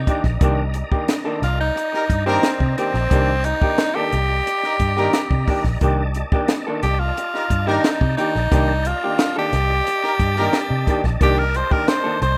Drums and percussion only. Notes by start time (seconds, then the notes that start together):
0.07 kick, closed hi-hat
0.24 kick, snare
0.41 kick, closed hi-hat
0.74 closed hi-hat
0.92 kick
1.08 snare, closed hi-hat
1.43 snare, closed hi-hat
1.77 closed hi-hat
1.94 snare
2.10 kick, closed hi-hat
2.27 snare
2.43 snare, closed hi-hat
2.60 kick
2.78 closed hi-hat
2.94 snare
3.11 kick, closed hi-hat
3.44 closed hi-hat
3.62 kick
3.78 snare, closed hi-hat
4.12 closed hi-hat
4.47 closed hi-hat
4.63 snare
4.80 kick, closed hi-hat
4.97 snare
5.13 snare, closed hi-hat
5.31 kick
5.48 kick, open hi-hat
5.64 kick, snare
5.81 kick, closed hi-hat
6.14 closed hi-hat
6.32 kick
6.48 snare, closed hi-hat
6.83 closed hi-hat
7.17 closed hi-hat
7.34 snare
7.50 kick, closed hi-hat
7.68 snare
7.84 snare, closed hi-hat
8.01 kick
8.18 closed hi-hat
8.35 snare
8.52 kick, closed hi-hat
8.85 closed hi-hat
9.19 snare, closed hi-hat
9.53 snare, closed hi-hat
9.87 closed hi-hat
10.04 snare
10.20 kick, closed hi-hat
10.36 snare
10.53 snare, closed hi-hat
10.87 kick, closed hi-hat
11.04 kick, snare
11.21 kick, closed hi-hat
11.54 closed hi-hat
11.71 kick
11.88 snare, closed hi-hat
12.22 closed hi-hat